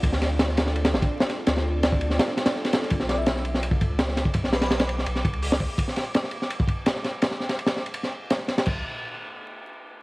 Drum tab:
CC |----------------|----------------|----------------|----------------|
RD |x-x-x-x-xx-x--x-|x---x-x-x-xx-xx-|x-x-x-x-x-x-x-x-|x-xxxxx-x-xx--x-|
HH |----------------|----------------|----------------|------------o---|
SD |-oo-oooo-oo--oo-|oo--o--ooooooooo|-oo-oo-o----ooo-|-ooooo-o-o---o--|
BD |o----------o----|-----o----------|o--------oo----o|o---------o---o-|

CC |----------------|----------------|x---------------|
RD |x-x-x-x-x-x-x-x-|x--xxx-xx---x-xx|----------------|
HH |----------------|----------------|----------------|
SD |-oo-oo-o----ooo-|oooo-oo--o--oooo|----------------|
BD |o--------oo-----|----------------|o---------------|